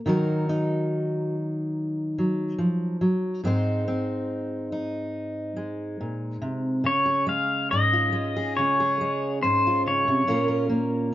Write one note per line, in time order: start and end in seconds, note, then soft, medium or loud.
0.06 2.58 D#3 medium
0.06 2.17 F#3 soft
0.06 0.49 D#4 soft
0.06 1.34 F#4 soft
0.06 3.41 A#4 soft
0.49 3.40 D#4 medium
2.18 3.00 F#3 soft
2.58 3.01 F3 soft
3.01 3.44 F#3 soft
3.44 6.00 G#2 medium
3.44 5.55 G#3 soft
3.44 3.87 C4 soft
3.44 4.71 D#4 soft
3.44 6.82 C5 medium
3.88 6.81 C4 soft
4.72 6.86 D#4 soft
5.56 6.80 G#3 soft
6.01 6.41 A#2 soft
6.42 6.85 C3 soft
6.84 7.70 C#3 soft
6.84 7.26 C#5 medium
7.06 8.34 G#4 soft
7.26 8.11 G#3 soft
7.26 7.71 F5 medium
7.71 8.57 G#2 soft
7.71 9.42 C#4 soft
7.71 8.52 D#5 medium
7.93 9.63 F4 soft
8.12 8.98 G#3 soft
8.36 8.78 G#4 soft
8.57 9.43 C#3 medium
8.57 9.38 C#5 medium
8.80 10.28 G#4 soft
9.01 10.23 G#3 soft
9.43 10.06 G#2 soft
9.43 10.23 C#4 soft
9.43 9.82 C5 medium
9.67 10.24 F4 soft
9.87 10.07 C#3 soft
9.87 10.67 C#5 medium
10.08 10.27 C3 soft
10.27 11.14 A#2 medium
10.27 10.69 A#3 medium
10.27 11.12 C#4 soft
10.27 11.14 F4 soft
10.27 10.48 A#4 soft
10.48 11.14 A#4 soft
10.69 11.14 A#3 medium